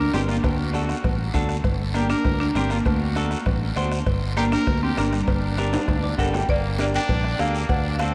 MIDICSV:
0, 0, Header, 1, 7, 480
1, 0, Start_track
1, 0, Key_signature, -2, "minor"
1, 0, Tempo, 302115
1, 707, Time_signature, 4, 2, 24, 8
1, 12936, End_track
2, 0, Start_track
2, 0, Title_t, "Clean electric guitar"
2, 0, Program_c, 0, 27
2, 215, Note_on_c, 0, 62, 71
2, 220, Note_on_c, 0, 67, 62
2, 230, Note_on_c, 0, 70, 76
2, 558, Note_off_c, 0, 62, 0
2, 561, Note_off_c, 0, 67, 0
2, 563, Note_off_c, 0, 70, 0
2, 1176, Note_on_c, 0, 62, 69
2, 1182, Note_on_c, 0, 66, 58
2, 1189, Note_on_c, 0, 69, 73
2, 1518, Note_off_c, 0, 62, 0
2, 1521, Note_off_c, 0, 66, 0
2, 1522, Note_off_c, 0, 69, 0
2, 2127, Note_on_c, 0, 62, 85
2, 2137, Note_on_c, 0, 66, 70
2, 2139, Note_on_c, 0, 69, 93
2, 2474, Note_off_c, 0, 62, 0
2, 2477, Note_off_c, 0, 66, 0
2, 2479, Note_off_c, 0, 69, 0
2, 3087, Note_on_c, 0, 62, 63
2, 3095, Note_on_c, 0, 67, 65
2, 3109, Note_on_c, 0, 70, 74
2, 3433, Note_off_c, 0, 62, 0
2, 3438, Note_off_c, 0, 67, 0
2, 3441, Note_off_c, 0, 70, 0
2, 4055, Note_on_c, 0, 62, 65
2, 4062, Note_on_c, 0, 67, 61
2, 4068, Note_on_c, 0, 70, 78
2, 4398, Note_off_c, 0, 62, 0
2, 4400, Note_off_c, 0, 67, 0
2, 4404, Note_off_c, 0, 70, 0
2, 5015, Note_on_c, 0, 62, 70
2, 5026, Note_on_c, 0, 66, 64
2, 5031, Note_on_c, 0, 69, 78
2, 5358, Note_off_c, 0, 62, 0
2, 5361, Note_off_c, 0, 66, 0
2, 5366, Note_off_c, 0, 69, 0
2, 5975, Note_on_c, 0, 62, 76
2, 5988, Note_on_c, 0, 66, 75
2, 5993, Note_on_c, 0, 72, 90
2, 6319, Note_off_c, 0, 62, 0
2, 6322, Note_off_c, 0, 66, 0
2, 6327, Note_off_c, 0, 72, 0
2, 6950, Note_on_c, 0, 62, 71
2, 6958, Note_on_c, 0, 67, 63
2, 6960, Note_on_c, 0, 70, 76
2, 7286, Note_off_c, 0, 62, 0
2, 7288, Note_off_c, 0, 67, 0
2, 7290, Note_off_c, 0, 70, 0
2, 7894, Note_on_c, 0, 62, 66
2, 7899, Note_on_c, 0, 67, 64
2, 7908, Note_on_c, 0, 70, 79
2, 8238, Note_off_c, 0, 62, 0
2, 8239, Note_off_c, 0, 67, 0
2, 8244, Note_off_c, 0, 70, 0
2, 8859, Note_on_c, 0, 62, 83
2, 8872, Note_on_c, 0, 67, 75
2, 8874, Note_on_c, 0, 70, 90
2, 9201, Note_off_c, 0, 62, 0
2, 9204, Note_off_c, 0, 67, 0
2, 9207, Note_off_c, 0, 70, 0
2, 9588, Note_on_c, 0, 74, 65
2, 9811, Note_off_c, 0, 74, 0
2, 9815, Note_on_c, 0, 62, 75
2, 9821, Note_on_c, 0, 67, 70
2, 9824, Note_on_c, 0, 78, 66
2, 9833, Note_on_c, 0, 69, 93
2, 10048, Note_off_c, 0, 78, 0
2, 10063, Note_on_c, 0, 79, 66
2, 10158, Note_off_c, 0, 62, 0
2, 10162, Note_off_c, 0, 67, 0
2, 10165, Note_off_c, 0, 69, 0
2, 10289, Note_off_c, 0, 79, 0
2, 10786, Note_on_c, 0, 62, 72
2, 10791, Note_on_c, 0, 67, 68
2, 10799, Note_on_c, 0, 70, 69
2, 11123, Note_off_c, 0, 62, 0
2, 11127, Note_off_c, 0, 67, 0
2, 11127, Note_off_c, 0, 70, 0
2, 11741, Note_on_c, 0, 62, 68
2, 11746, Note_on_c, 0, 67, 68
2, 11759, Note_on_c, 0, 69, 75
2, 12079, Note_off_c, 0, 62, 0
2, 12083, Note_off_c, 0, 67, 0
2, 12086, Note_off_c, 0, 69, 0
2, 12699, Note_on_c, 0, 62, 67
2, 12704, Note_on_c, 0, 66, 62
2, 12716, Note_on_c, 0, 69, 79
2, 12936, Note_off_c, 0, 62, 0
2, 12936, Note_off_c, 0, 66, 0
2, 12936, Note_off_c, 0, 69, 0
2, 12936, End_track
3, 0, Start_track
3, 0, Title_t, "Trumpet"
3, 0, Program_c, 1, 56
3, 0, Note_on_c, 1, 70, 78
3, 214, Note_off_c, 1, 70, 0
3, 228, Note_on_c, 1, 67, 77
3, 336, Note_off_c, 1, 67, 0
3, 487, Note_on_c, 1, 65, 66
3, 591, Note_off_c, 1, 65, 0
3, 714, Note_on_c, 1, 66, 65
3, 2087, Note_off_c, 1, 66, 0
3, 3105, Note_on_c, 1, 67, 80
3, 3329, Note_off_c, 1, 67, 0
3, 3338, Note_on_c, 1, 70, 94
3, 3789, Note_off_c, 1, 70, 0
3, 3825, Note_on_c, 1, 70, 80
3, 3934, Note_off_c, 1, 70, 0
3, 4087, Note_on_c, 1, 67, 73
3, 4301, Note_off_c, 1, 67, 0
3, 4315, Note_on_c, 1, 65, 71
3, 4421, Note_off_c, 1, 65, 0
3, 4549, Note_on_c, 1, 66, 67
3, 5925, Note_off_c, 1, 66, 0
3, 6945, Note_on_c, 1, 67, 87
3, 7054, Note_off_c, 1, 67, 0
3, 7192, Note_on_c, 1, 70, 100
3, 7637, Note_off_c, 1, 70, 0
3, 7681, Note_on_c, 1, 67, 86
3, 7899, Note_off_c, 1, 67, 0
3, 7912, Note_on_c, 1, 70, 72
3, 8019, Note_off_c, 1, 70, 0
3, 8145, Note_on_c, 1, 62, 72
3, 9763, Note_off_c, 1, 62, 0
3, 9843, Note_on_c, 1, 55, 68
3, 10282, Note_off_c, 1, 55, 0
3, 10318, Note_on_c, 1, 58, 76
3, 10760, Note_off_c, 1, 58, 0
3, 10796, Note_on_c, 1, 58, 89
3, 10902, Note_off_c, 1, 58, 0
3, 11037, Note_on_c, 1, 62, 100
3, 11701, Note_off_c, 1, 62, 0
3, 11766, Note_on_c, 1, 58, 86
3, 12203, Note_off_c, 1, 58, 0
3, 12230, Note_on_c, 1, 62, 79
3, 12674, Note_off_c, 1, 62, 0
3, 12713, Note_on_c, 1, 60, 84
3, 12933, Note_off_c, 1, 60, 0
3, 12936, End_track
4, 0, Start_track
4, 0, Title_t, "Marimba"
4, 0, Program_c, 2, 12
4, 0, Note_on_c, 2, 62, 94
4, 209, Note_off_c, 2, 62, 0
4, 221, Note_on_c, 2, 60, 89
4, 331, Note_off_c, 2, 60, 0
4, 450, Note_on_c, 2, 58, 80
4, 562, Note_off_c, 2, 58, 0
4, 686, Note_on_c, 2, 57, 72
4, 2073, Note_off_c, 2, 57, 0
4, 3090, Note_on_c, 2, 58, 86
4, 3322, Note_off_c, 2, 58, 0
4, 3334, Note_on_c, 2, 62, 106
4, 3787, Note_off_c, 2, 62, 0
4, 3816, Note_on_c, 2, 62, 91
4, 3927, Note_off_c, 2, 62, 0
4, 4080, Note_on_c, 2, 60, 93
4, 4318, Note_on_c, 2, 58, 85
4, 4321, Note_off_c, 2, 60, 0
4, 4424, Note_off_c, 2, 58, 0
4, 4558, Note_on_c, 2, 57, 76
4, 5930, Note_off_c, 2, 57, 0
4, 6946, Note_on_c, 2, 58, 92
4, 7054, Note_off_c, 2, 58, 0
4, 7185, Note_on_c, 2, 62, 111
4, 7633, Note_off_c, 2, 62, 0
4, 7673, Note_on_c, 2, 60, 96
4, 7894, Note_off_c, 2, 60, 0
4, 7917, Note_on_c, 2, 62, 97
4, 8023, Note_off_c, 2, 62, 0
4, 8149, Note_on_c, 2, 55, 78
4, 9765, Note_off_c, 2, 55, 0
4, 9851, Note_on_c, 2, 70, 84
4, 10287, Note_off_c, 2, 70, 0
4, 10326, Note_on_c, 2, 74, 99
4, 10764, Note_off_c, 2, 74, 0
4, 10817, Note_on_c, 2, 74, 92
4, 10918, Note_off_c, 2, 74, 0
4, 11053, Note_on_c, 2, 79, 112
4, 11747, Note_on_c, 2, 77, 96
4, 11781, Note_off_c, 2, 79, 0
4, 12193, Note_off_c, 2, 77, 0
4, 12219, Note_on_c, 2, 78, 100
4, 12690, Note_on_c, 2, 77, 91
4, 12717, Note_off_c, 2, 78, 0
4, 12920, Note_off_c, 2, 77, 0
4, 12936, End_track
5, 0, Start_track
5, 0, Title_t, "Fingered electric bass"
5, 0, Program_c, 3, 33
5, 219, Note_on_c, 3, 31, 90
5, 606, Note_off_c, 3, 31, 0
5, 697, Note_on_c, 3, 38, 97
5, 1469, Note_off_c, 3, 38, 0
5, 1655, Note_on_c, 3, 33, 89
5, 2044, Note_off_c, 3, 33, 0
5, 2132, Note_on_c, 3, 38, 87
5, 2522, Note_off_c, 3, 38, 0
5, 2607, Note_on_c, 3, 31, 99
5, 3383, Note_off_c, 3, 31, 0
5, 3573, Note_on_c, 3, 38, 92
5, 3963, Note_off_c, 3, 38, 0
5, 4053, Note_on_c, 3, 31, 93
5, 4443, Note_off_c, 3, 31, 0
5, 4537, Note_on_c, 3, 38, 93
5, 5309, Note_off_c, 3, 38, 0
5, 5500, Note_on_c, 3, 33, 97
5, 5887, Note_off_c, 3, 33, 0
5, 5977, Note_on_c, 3, 38, 91
5, 6365, Note_off_c, 3, 38, 0
5, 6454, Note_on_c, 3, 31, 96
5, 7228, Note_off_c, 3, 31, 0
5, 7420, Note_on_c, 3, 38, 93
5, 7808, Note_off_c, 3, 38, 0
5, 7907, Note_on_c, 3, 31, 95
5, 8292, Note_off_c, 3, 31, 0
5, 8383, Note_on_c, 3, 31, 98
5, 9153, Note_off_c, 3, 31, 0
5, 9341, Note_on_c, 3, 38, 91
5, 9728, Note_off_c, 3, 38, 0
5, 9826, Note_on_c, 3, 31, 87
5, 10211, Note_off_c, 3, 31, 0
5, 10307, Note_on_c, 3, 31, 96
5, 11075, Note_off_c, 3, 31, 0
5, 11265, Note_on_c, 3, 34, 102
5, 11649, Note_off_c, 3, 34, 0
5, 11748, Note_on_c, 3, 38, 88
5, 12131, Note_off_c, 3, 38, 0
5, 12221, Note_on_c, 3, 38, 100
5, 12936, Note_off_c, 3, 38, 0
5, 12936, End_track
6, 0, Start_track
6, 0, Title_t, "Two-headed folk drums"
6, 217, Note_on_c, 9, 37, 79
6, 376, Note_off_c, 9, 37, 0
6, 460, Note_on_c, 9, 37, 73
6, 619, Note_off_c, 9, 37, 0
6, 695, Note_on_c, 9, 37, 85
6, 697, Note_on_c, 9, 36, 77
6, 854, Note_off_c, 9, 37, 0
6, 856, Note_off_c, 9, 36, 0
6, 1168, Note_on_c, 9, 37, 76
6, 1327, Note_off_c, 9, 37, 0
6, 1415, Note_on_c, 9, 37, 81
6, 1574, Note_off_c, 9, 37, 0
6, 1654, Note_on_c, 9, 36, 78
6, 1656, Note_on_c, 9, 37, 78
6, 1813, Note_off_c, 9, 36, 0
6, 1815, Note_off_c, 9, 37, 0
6, 2127, Note_on_c, 9, 37, 76
6, 2131, Note_on_c, 9, 36, 75
6, 2286, Note_off_c, 9, 37, 0
6, 2290, Note_off_c, 9, 36, 0
6, 2365, Note_on_c, 9, 37, 77
6, 2524, Note_off_c, 9, 37, 0
6, 2605, Note_on_c, 9, 37, 74
6, 2609, Note_on_c, 9, 36, 84
6, 2764, Note_off_c, 9, 37, 0
6, 2768, Note_off_c, 9, 36, 0
6, 3086, Note_on_c, 9, 37, 78
6, 3245, Note_off_c, 9, 37, 0
6, 3330, Note_on_c, 9, 37, 77
6, 3489, Note_off_c, 9, 37, 0
6, 3569, Note_on_c, 9, 37, 79
6, 3572, Note_on_c, 9, 36, 82
6, 3728, Note_off_c, 9, 37, 0
6, 3731, Note_off_c, 9, 36, 0
6, 4054, Note_on_c, 9, 37, 82
6, 4213, Note_off_c, 9, 37, 0
6, 4295, Note_on_c, 9, 37, 75
6, 4454, Note_off_c, 9, 37, 0
6, 4537, Note_on_c, 9, 36, 79
6, 4539, Note_on_c, 9, 37, 80
6, 4696, Note_off_c, 9, 36, 0
6, 4698, Note_off_c, 9, 37, 0
6, 5020, Note_on_c, 9, 37, 81
6, 5179, Note_off_c, 9, 37, 0
6, 5256, Note_on_c, 9, 37, 80
6, 5414, Note_off_c, 9, 37, 0
6, 5498, Note_on_c, 9, 36, 84
6, 5498, Note_on_c, 9, 37, 89
6, 5657, Note_off_c, 9, 36, 0
6, 5657, Note_off_c, 9, 37, 0
6, 5983, Note_on_c, 9, 37, 81
6, 6142, Note_off_c, 9, 37, 0
6, 6222, Note_on_c, 9, 37, 84
6, 6381, Note_off_c, 9, 37, 0
6, 6457, Note_on_c, 9, 36, 76
6, 6457, Note_on_c, 9, 37, 88
6, 6616, Note_off_c, 9, 36, 0
6, 6616, Note_off_c, 9, 37, 0
6, 6938, Note_on_c, 9, 37, 77
6, 7097, Note_off_c, 9, 37, 0
6, 7184, Note_on_c, 9, 37, 80
6, 7343, Note_off_c, 9, 37, 0
6, 7420, Note_on_c, 9, 36, 83
6, 7423, Note_on_c, 9, 37, 87
6, 7579, Note_off_c, 9, 36, 0
6, 7581, Note_off_c, 9, 37, 0
6, 7905, Note_on_c, 9, 37, 78
6, 8064, Note_off_c, 9, 37, 0
6, 8147, Note_on_c, 9, 37, 74
6, 8306, Note_off_c, 9, 37, 0
6, 8383, Note_on_c, 9, 36, 83
6, 8385, Note_on_c, 9, 37, 87
6, 8542, Note_off_c, 9, 36, 0
6, 8544, Note_off_c, 9, 37, 0
6, 8867, Note_on_c, 9, 37, 80
6, 9026, Note_off_c, 9, 37, 0
6, 9108, Note_on_c, 9, 37, 85
6, 9267, Note_off_c, 9, 37, 0
6, 9341, Note_on_c, 9, 37, 84
6, 9344, Note_on_c, 9, 36, 85
6, 9500, Note_off_c, 9, 37, 0
6, 9503, Note_off_c, 9, 36, 0
6, 9826, Note_on_c, 9, 36, 64
6, 9829, Note_on_c, 9, 37, 82
6, 9985, Note_off_c, 9, 36, 0
6, 9988, Note_off_c, 9, 37, 0
6, 10071, Note_on_c, 9, 37, 75
6, 10230, Note_off_c, 9, 37, 0
6, 10306, Note_on_c, 9, 36, 82
6, 10465, Note_off_c, 9, 36, 0
6, 10791, Note_on_c, 9, 37, 79
6, 10950, Note_off_c, 9, 37, 0
6, 11265, Note_on_c, 9, 36, 82
6, 11424, Note_off_c, 9, 36, 0
6, 11505, Note_on_c, 9, 37, 72
6, 11664, Note_off_c, 9, 37, 0
6, 11748, Note_on_c, 9, 37, 80
6, 11906, Note_off_c, 9, 37, 0
6, 12223, Note_on_c, 9, 36, 90
6, 12382, Note_off_c, 9, 36, 0
6, 12704, Note_on_c, 9, 37, 84
6, 12863, Note_off_c, 9, 37, 0
6, 12936, End_track
7, 0, Start_track
7, 0, Title_t, "Drums"
7, 222, Note_on_c, 9, 73, 74
7, 226, Note_on_c, 9, 63, 76
7, 226, Note_on_c, 9, 64, 67
7, 228, Note_on_c, 9, 56, 68
7, 228, Note_on_c, 9, 66, 69
7, 381, Note_off_c, 9, 73, 0
7, 385, Note_off_c, 9, 63, 0
7, 385, Note_off_c, 9, 64, 0
7, 387, Note_off_c, 9, 56, 0
7, 387, Note_off_c, 9, 66, 0
7, 457, Note_on_c, 9, 73, 73
7, 616, Note_off_c, 9, 73, 0
7, 696, Note_on_c, 9, 74, 69
7, 706, Note_on_c, 9, 56, 103
7, 855, Note_off_c, 9, 74, 0
7, 864, Note_off_c, 9, 56, 0
7, 1180, Note_on_c, 9, 73, 65
7, 1182, Note_on_c, 9, 63, 85
7, 1183, Note_on_c, 9, 56, 64
7, 1339, Note_off_c, 9, 73, 0
7, 1341, Note_off_c, 9, 63, 0
7, 1342, Note_off_c, 9, 56, 0
7, 1419, Note_on_c, 9, 73, 74
7, 1578, Note_off_c, 9, 73, 0
7, 1656, Note_on_c, 9, 74, 65
7, 1663, Note_on_c, 9, 56, 77
7, 1663, Note_on_c, 9, 63, 32
7, 1663, Note_on_c, 9, 64, 82
7, 1815, Note_off_c, 9, 74, 0
7, 1822, Note_off_c, 9, 56, 0
7, 1822, Note_off_c, 9, 63, 0
7, 1822, Note_off_c, 9, 64, 0
7, 2126, Note_on_c, 9, 73, 71
7, 2138, Note_on_c, 9, 56, 65
7, 2144, Note_on_c, 9, 63, 74
7, 2144, Note_on_c, 9, 64, 69
7, 2285, Note_off_c, 9, 73, 0
7, 2297, Note_off_c, 9, 56, 0
7, 2303, Note_off_c, 9, 63, 0
7, 2303, Note_off_c, 9, 64, 0
7, 2367, Note_on_c, 9, 73, 69
7, 2526, Note_off_c, 9, 73, 0
7, 2607, Note_on_c, 9, 74, 75
7, 2618, Note_on_c, 9, 56, 103
7, 2618, Note_on_c, 9, 63, 31
7, 2618, Note_on_c, 9, 64, 71
7, 2766, Note_off_c, 9, 74, 0
7, 2777, Note_off_c, 9, 56, 0
7, 2777, Note_off_c, 9, 63, 0
7, 2777, Note_off_c, 9, 64, 0
7, 3093, Note_on_c, 9, 73, 69
7, 3096, Note_on_c, 9, 63, 84
7, 3103, Note_on_c, 9, 56, 59
7, 3251, Note_off_c, 9, 73, 0
7, 3254, Note_off_c, 9, 63, 0
7, 3262, Note_off_c, 9, 56, 0
7, 3329, Note_on_c, 9, 73, 69
7, 3488, Note_off_c, 9, 73, 0
7, 3568, Note_on_c, 9, 74, 67
7, 3582, Note_on_c, 9, 63, 31
7, 3582, Note_on_c, 9, 64, 86
7, 3587, Note_on_c, 9, 56, 77
7, 3727, Note_off_c, 9, 74, 0
7, 3741, Note_off_c, 9, 63, 0
7, 3741, Note_off_c, 9, 64, 0
7, 3746, Note_off_c, 9, 56, 0
7, 4056, Note_on_c, 9, 73, 71
7, 4065, Note_on_c, 9, 63, 71
7, 4065, Note_on_c, 9, 64, 68
7, 4067, Note_on_c, 9, 56, 66
7, 4215, Note_off_c, 9, 73, 0
7, 4224, Note_off_c, 9, 63, 0
7, 4224, Note_off_c, 9, 64, 0
7, 4226, Note_off_c, 9, 56, 0
7, 4292, Note_on_c, 9, 73, 69
7, 4451, Note_off_c, 9, 73, 0
7, 4533, Note_on_c, 9, 74, 68
7, 4540, Note_on_c, 9, 63, 32
7, 4546, Note_on_c, 9, 56, 107
7, 4691, Note_off_c, 9, 74, 0
7, 4699, Note_off_c, 9, 63, 0
7, 4705, Note_off_c, 9, 56, 0
7, 5018, Note_on_c, 9, 73, 68
7, 5021, Note_on_c, 9, 63, 83
7, 5026, Note_on_c, 9, 56, 64
7, 5177, Note_off_c, 9, 73, 0
7, 5180, Note_off_c, 9, 63, 0
7, 5185, Note_off_c, 9, 56, 0
7, 5257, Note_on_c, 9, 73, 70
7, 5416, Note_off_c, 9, 73, 0
7, 5493, Note_on_c, 9, 74, 66
7, 5499, Note_on_c, 9, 63, 34
7, 5499, Note_on_c, 9, 64, 77
7, 5507, Note_on_c, 9, 56, 78
7, 5652, Note_off_c, 9, 74, 0
7, 5658, Note_off_c, 9, 63, 0
7, 5658, Note_off_c, 9, 64, 0
7, 5665, Note_off_c, 9, 56, 0
7, 5979, Note_on_c, 9, 63, 79
7, 5980, Note_on_c, 9, 73, 73
7, 5984, Note_on_c, 9, 56, 74
7, 6138, Note_off_c, 9, 63, 0
7, 6138, Note_off_c, 9, 73, 0
7, 6143, Note_off_c, 9, 56, 0
7, 6221, Note_on_c, 9, 73, 74
7, 6380, Note_off_c, 9, 73, 0
7, 6460, Note_on_c, 9, 56, 108
7, 6465, Note_on_c, 9, 63, 31
7, 6465, Note_on_c, 9, 64, 66
7, 6465, Note_on_c, 9, 74, 75
7, 6619, Note_off_c, 9, 56, 0
7, 6623, Note_off_c, 9, 74, 0
7, 6624, Note_off_c, 9, 63, 0
7, 6624, Note_off_c, 9, 64, 0
7, 6939, Note_on_c, 9, 56, 66
7, 6941, Note_on_c, 9, 63, 87
7, 6946, Note_on_c, 9, 73, 71
7, 7098, Note_off_c, 9, 56, 0
7, 7100, Note_off_c, 9, 63, 0
7, 7105, Note_off_c, 9, 73, 0
7, 7183, Note_on_c, 9, 73, 68
7, 7342, Note_off_c, 9, 73, 0
7, 7425, Note_on_c, 9, 56, 87
7, 7425, Note_on_c, 9, 63, 32
7, 7425, Note_on_c, 9, 64, 75
7, 7426, Note_on_c, 9, 74, 71
7, 7584, Note_off_c, 9, 56, 0
7, 7584, Note_off_c, 9, 63, 0
7, 7584, Note_off_c, 9, 64, 0
7, 7584, Note_off_c, 9, 74, 0
7, 7905, Note_on_c, 9, 63, 83
7, 7906, Note_on_c, 9, 73, 76
7, 7908, Note_on_c, 9, 56, 66
7, 8064, Note_off_c, 9, 63, 0
7, 8065, Note_off_c, 9, 73, 0
7, 8067, Note_off_c, 9, 56, 0
7, 8144, Note_on_c, 9, 73, 71
7, 8303, Note_off_c, 9, 73, 0
7, 8380, Note_on_c, 9, 74, 72
7, 8385, Note_on_c, 9, 56, 104
7, 8386, Note_on_c, 9, 63, 34
7, 8539, Note_off_c, 9, 74, 0
7, 8544, Note_off_c, 9, 56, 0
7, 8545, Note_off_c, 9, 63, 0
7, 8866, Note_on_c, 9, 73, 65
7, 8870, Note_on_c, 9, 56, 66
7, 8870, Note_on_c, 9, 63, 86
7, 9025, Note_off_c, 9, 73, 0
7, 9029, Note_off_c, 9, 56, 0
7, 9029, Note_off_c, 9, 63, 0
7, 9103, Note_on_c, 9, 73, 71
7, 9116, Note_on_c, 9, 65, 102
7, 9262, Note_off_c, 9, 73, 0
7, 9275, Note_off_c, 9, 65, 0
7, 9350, Note_on_c, 9, 74, 71
7, 9353, Note_on_c, 9, 56, 79
7, 9353, Note_on_c, 9, 65, 98
7, 9357, Note_on_c, 9, 63, 31
7, 9357, Note_on_c, 9, 64, 79
7, 9509, Note_off_c, 9, 74, 0
7, 9512, Note_off_c, 9, 56, 0
7, 9512, Note_off_c, 9, 65, 0
7, 9516, Note_off_c, 9, 63, 0
7, 9516, Note_off_c, 9, 64, 0
7, 9594, Note_on_c, 9, 65, 81
7, 9753, Note_off_c, 9, 65, 0
7, 9829, Note_on_c, 9, 63, 82
7, 9836, Note_on_c, 9, 73, 73
7, 9837, Note_on_c, 9, 56, 73
7, 9988, Note_off_c, 9, 63, 0
7, 9995, Note_off_c, 9, 73, 0
7, 9996, Note_off_c, 9, 56, 0
7, 10078, Note_on_c, 9, 66, 71
7, 10079, Note_on_c, 9, 73, 71
7, 10237, Note_off_c, 9, 66, 0
7, 10238, Note_off_c, 9, 73, 0
7, 10305, Note_on_c, 9, 63, 34
7, 10308, Note_on_c, 9, 74, 75
7, 10311, Note_on_c, 9, 56, 105
7, 10464, Note_off_c, 9, 63, 0
7, 10467, Note_off_c, 9, 74, 0
7, 10470, Note_off_c, 9, 56, 0
7, 10781, Note_on_c, 9, 63, 94
7, 10794, Note_on_c, 9, 73, 75
7, 10801, Note_on_c, 9, 56, 64
7, 10940, Note_off_c, 9, 63, 0
7, 10953, Note_off_c, 9, 73, 0
7, 10960, Note_off_c, 9, 56, 0
7, 11018, Note_on_c, 9, 63, 72
7, 11034, Note_on_c, 9, 73, 80
7, 11177, Note_off_c, 9, 63, 0
7, 11193, Note_off_c, 9, 73, 0
7, 11267, Note_on_c, 9, 63, 35
7, 11267, Note_on_c, 9, 64, 81
7, 11270, Note_on_c, 9, 56, 83
7, 11270, Note_on_c, 9, 74, 71
7, 11426, Note_off_c, 9, 63, 0
7, 11426, Note_off_c, 9, 64, 0
7, 11428, Note_off_c, 9, 56, 0
7, 11429, Note_off_c, 9, 74, 0
7, 11740, Note_on_c, 9, 63, 74
7, 11751, Note_on_c, 9, 73, 73
7, 11752, Note_on_c, 9, 56, 68
7, 11899, Note_off_c, 9, 63, 0
7, 11910, Note_off_c, 9, 73, 0
7, 11911, Note_off_c, 9, 56, 0
7, 11990, Note_on_c, 9, 73, 73
7, 12148, Note_off_c, 9, 73, 0
7, 12220, Note_on_c, 9, 63, 36
7, 12225, Note_on_c, 9, 74, 73
7, 12232, Note_on_c, 9, 56, 110
7, 12378, Note_off_c, 9, 63, 0
7, 12384, Note_off_c, 9, 74, 0
7, 12391, Note_off_c, 9, 56, 0
7, 12698, Note_on_c, 9, 63, 97
7, 12705, Note_on_c, 9, 56, 68
7, 12708, Note_on_c, 9, 73, 74
7, 12857, Note_off_c, 9, 63, 0
7, 12864, Note_off_c, 9, 56, 0
7, 12866, Note_off_c, 9, 73, 0
7, 12936, End_track
0, 0, End_of_file